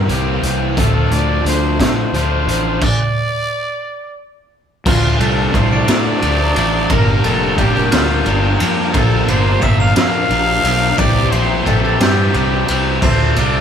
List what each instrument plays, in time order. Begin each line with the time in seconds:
Already playing: string machine A#4 E5 G5 C6
0.08 fingered electric bass C2, overdriven electric guitar E3 A#3 C4 G4, closed hi-hat
0.43 fingered electric bass C2, closed hi-hat
0.76 fingered electric bass D2, overdriven electric guitar F3 A3 D4 F4, string machine A4 D5 F5, trumpet A4, kick, closed hi-hat
1.11 fingered electric bass D2, trumpet D5, closed hi-hat
1.45 fingered electric bass D2, trumpet C5, closed hi-hat
1.79 fingered electric bass A2, trumpet C5, kick, snare, closed hi-hat
2.12 fingered electric bass D2, overdriven electric guitar F3 A3 D4 F4, closed hi-hat
2.47 fingered electric bass A1, closed hi-hat
2.81 trumpet D5, kick, crash
4.86 fingered electric bass D2, overdriven electric guitar F3 A3 D4, trumpet F4, string machine A4 D5 F5 C6, glockenspiel F6, kick, crash
5.19 fingered electric bass C2, overdriven electric guitar F3 A3 D4, trumpet A4, glockenspiel A6, ride
5.54 fingered electric bass C2, overdriven electric guitar F3 A3 D4, trumpet C5, glockenspiel C7, kick, ride
5.71 trumpet D5, glockenspiel D7
5.88 fingered electric bass A2, overdriven electric guitar F3 A3 D4, trumpet D5, glockenspiel D7, snare, ride
6.22 fingered electric bass D2, overdriven electric guitar F3 A3 D4, ride
6.55 fingered electric bass A1, overdriven electric guitar F3 A3 D4, ride
6.89 fingered electric bass G1, overdriven electric guitar G3 A#3 D4, string machine A#3 G5 D6, trumpet A#4, glockenspiel A#6, kick, ride
7.24 fingered electric bass F1, overdriven electric guitar G3 A#3 D4, trumpet A4, glockenspiel A6, ride
7.58 fingered electric bass F1, overdriven electric guitar G3 A#3 D4, trumpet G4, glockenspiel G6, kick, ride
7.75 trumpet G4, glockenspiel G6
7.91 fingered electric bass D2, overdriven electric guitar G3 A#3 D4, trumpet F4, glockenspiel F6, snare, ride
8.26 fingered electric bass G1, overdriven electric guitar G3 A#3 D4, ride
8.60 fingered electric bass F2, overdriven electric guitar G3 A#3 D4, ride
8.93 fingered electric bass A#1, overdriven electric guitar F3 A#3 D4, trumpet A4, string machine A5, glockenspiel A6, kick, ride
9.28 fingered electric bass G1, overdriven electric guitar F3 A#3 D4, trumpet C5, glockenspiel C7, ride
9.62 fingered electric bass G1, overdriven electric guitar F3 A#3 D4, trumpet E5, glockenspiel E7, kick, ride
9.80 trumpet F5, glockenspiel F7
9.96 fingered electric bass F2, overdriven electric guitar F3 A#3 D4, trumpet F5, glockenspiel F7, snare, ride
10.30 fingered electric bass A#1, overdriven electric guitar F3 A#3 D4, ride
10.64 fingered electric bass B1, overdriven electric guitar F3 A#3 D4, ride
10.97 fingered electric bass C2, overdriven electric guitar E3 C4 E4 G4, string machine C5 G5 E6, trumpet D5, glockenspiel D7, kick, ride
11.31 fingered electric bass A#1, overdriven electric guitar E3 C4 E4 G4, trumpet C5, glockenspiel C7, ride
11.65 fingered electric bass A#1, overdriven electric guitar E3 C4 E4 G4, trumpet A4, glockenspiel A6, kick, ride
11.83 trumpet A4, glockenspiel A6
11.99 fingered electric bass G2, overdriven electric guitar E3 C4 E4 G4, trumpet G4, glockenspiel G6, snare, ride
12.33 fingered electric bass C2, overdriven electric guitar E3 C4 E4 G4, ride
12.67 fingered electric bass C2, overdriven electric guitar E3 C4 E4 G4, ride
13.01 fingered electric bass D2, overdriven electric guitar F3 A3 D4 A4, trumpet C5, string machine F5 A5 D6, glockenspiel C7, kick, crash
13.36 fingered electric bass C2, overdriven electric guitar F3 A3 D4 A4, trumpet D5, glockenspiel D7, ride